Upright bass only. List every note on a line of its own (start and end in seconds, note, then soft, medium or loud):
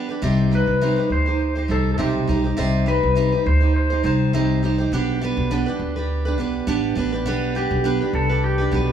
0.22 0.64 C2 medium
0.67 0.95 C2 medium
1.10 1.65 D2 medium
1.69 1.96 C2 medium
1.98 2.25 B1 medium
2.29 2.55 B1 medium
2.58 2.99 C2 medium
3.03 3.30 C2 medium
3.46 4.00 D2 medium
4.04 4.88 C2 loud
4.92 5.34 B1 loud
5.37 5.64 B1 medium
5.79 6.38 D2 medium
6.38 6.65 B1 medium
6.67 6.94 A1 medium
6.96 7.26 A1 medium
7.26 7.68 B1 loud
7.71 7.98 B1 medium
8.13 8.68 C2 medium
8.72 8.92 B1 loud